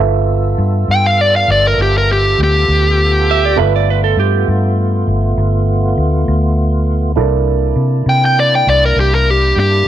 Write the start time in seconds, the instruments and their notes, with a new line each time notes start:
Already playing: upright piano F4 A4 B4
0.00 fingered electric bass G1, tonewheel organ B3 F4 A4, upright piano E5
0.58 fingered electric bass G2
0.88 fingered electric bass G2, lead electric guitar G5
1.06 lead electric guitar F5
1.21 lead electric guitar D5
1.36 lead electric guitar F5
1.48 fingered electric bass G1, lead electric guitar D5
1.67 lead electric guitar A#4
1.78 fingered electric bass G1
1.82 lead electric guitar G4
1.98 lead electric guitar A#4
2.12 lead electric guitar G4
2.39 fingered electric bass D2
2.43 lead electric guitar G4
2.68 fingered electric bass D2
3.31 electric slide guitar E5
3.45 electric slide guitar D5
3.56 fingered electric bass G1, tonewheel organ A3 B3 F4, upright piano F4 A4 B4 E5, electric slide guitar B4
3.76 electric slide guitar D5
3.90 electric slide guitar B4
4.04 electric slide guitar A4
4.17 fingered electric bass G2, electric slide guitar G4
4.48 fingered electric bass G2
5.07 fingered electric bass G1
5.37 fingered electric bass G1
5.97 fingered electric bass D2
6.28 fingered electric bass D2
7.15 fingered electric bass C2, tonewheel organ A#3 D4 E4, upright piano E4 A4 A#4 D5
7.76 fingered electric bass C3
8.06 fingered electric bass C3, lead electric guitar G5
8.25 lead electric guitar G5
8.40 lead electric guitar D5
8.55 lead electric guitar G5
8.67 fingered electric bass C2, lead electric guitar D5
8.86 lead electric guitar A#4
8.96 fingered electric bass C2, lead electric guitar G4
9.15 lead electric guitar A#4
9.30 lead electric guitar G4
9.56 fingered electric bass G2, lead electric guitar G4